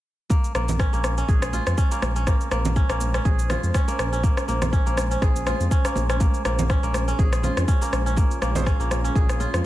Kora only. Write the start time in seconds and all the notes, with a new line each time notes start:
0.30 A#3
0.55 A#3
0.79 C#4
0.93 A#3
1.18 C#4
1.29 G#4
1.53 F4
1.78 C#4
1.91 A#3
2.16 C#4
2.27 A#3
2.52 A#3
2.76 C#4
2.90 A#3
3.14 C#4
3.25 G#4
3.50 F4
3.74 C#4
3.88 A#3
4.13 C#4
4.23 A#3
4.48 A#3
4.73 C#4
4.86 A#3
5.11 C#4
5.22 G#4
5.47 F4
5.71 C#4
5.85 A#3
6.10 C#4
6.21 A#3
6.45 A#3
6.70 C#4
6.83 A#3
7.08 C#4
7.19 G#4
7.43 F4
7.68 C#4
7.82 A#3
8.06 C#4
8.17 A#3
8.42 A#3
8.66 C#4
8.80 A#3
9.04 C#4
9.15 G#4
9.40 F4